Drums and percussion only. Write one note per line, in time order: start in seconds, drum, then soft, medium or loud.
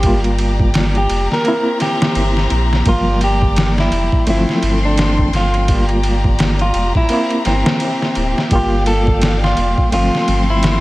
0.03 kick loud
0.03 ride medium
0.24 ride soft
0.39 ride medium
0.59 kick loud
0.74 snare loud
0.74 ride medium
0.95 ride soft
1.10 ride medium
1.32 snare soft
1.45 ride medium
1.80 snare soft
1.80 ride medium
2.02 snare loud
2.15 ride medium
2.37 snare soft
2.50 ride medium
2.73 snare soft
2.86 kick loud
2.86 ride medium
3.21 ride medium
3.42 kick medium
3.56 snare loud
3.56 ride medium
3.78 snare medium
3.92 ride medium
4.12 kick loud
4.27 ride medium
4.49 snare soft
4.63 ride medium
4.98 snare loud
4.98 ride medium
5.18 kick medium
5.33 snare soft
5.33 ride medium
5.54 ride soft
5.68 kick loud
5.68 ride medium
5.89 ride soft
6.03 ride medium
6.24 kick medium
6.39 snare loud
6.39 ride medium
6.59 ride soft
6.74 ride medium
6.95 kick loud
7.09 ride medium
7.30 ride soft
7.45 snare soft
7.45 ride medium
7.66 snare loud
7.80 ride medium
8.02 snare soft
8.15 ride medium
8.38 snare soft
8.51 kick loud
8.51 ride medium
8.86 ride medium
9.07 kick medium
9.22 snare loud
9.22 ride medium
9.44 snare medium
9.57 ride medium
9.78 kick medium
9.92 ride medium
10.15 snare soft
10.28 ride medium
10.63 snare loud
10.63 ride medium